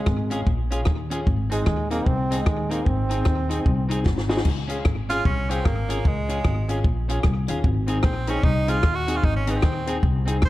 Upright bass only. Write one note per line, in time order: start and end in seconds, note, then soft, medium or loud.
0.07 0.41 G#1 medium
0.47 0.81 A#1 loud
0.87 1.21 D#2 loud
1.27 1.60 G#1 loud
1.67 2.01 D#2 loud
2.07 2.47 C2 loud
2.47 2.80 D#2 medium
2.87 3.20 G#1 loud
3.27 3.60 D#2 loud
3.66 4.08 C2 loud
4.07 4.40 G#1 medium
4.46 4.80 C#2 medium
4.86 5.20 G#1 medium
5.26 5.60 C2 loud
5.65 5.99 G#1 medium
6.05 6.39 C#2 loud
6.45 6.79 G#1 loud
6.85 7.19 A#1 loud
7.25 7.46 C2 loud
7.49 7.63 D#2 medium
7.64 7.98 G#1 loud
8.04 8.38 A#1 loud
8.44 8.78 C2 loud
9.24 9.58 G#1 loud
9.64 9.98 D#2 medium
10.03 10.45 C2 loud
10.43 10.49 G#1 medium